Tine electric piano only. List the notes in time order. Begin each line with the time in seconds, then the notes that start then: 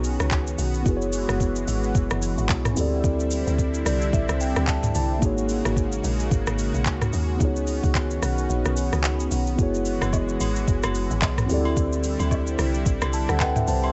Already playing: B3 D#4 F#4 G#4 C#5
0.83 B3 E4 F#4
0.88 G#4 B4
0.97 C#5
2.73 C4 E4 G4
2.79 A4 D5
3.86 D5
4.14 E5
4.41 G5
4.68 A5
4.95 A5
5.19 A#3 D#4 F#4
5.24 G#4 C#5
7.37 B3 D#4 F4
7.43 G#4 C#5
7.47 F#4
9.55 B3 E4 F#4
9.61 G#4 C#5
11.46 C4 E4 G4
11.52 A4 D5
13.14 A5
13.29 A4 F#5
13.41 B4 F#5 G5
13.57 E5
13.68 C5 A5
13.84 E5 C6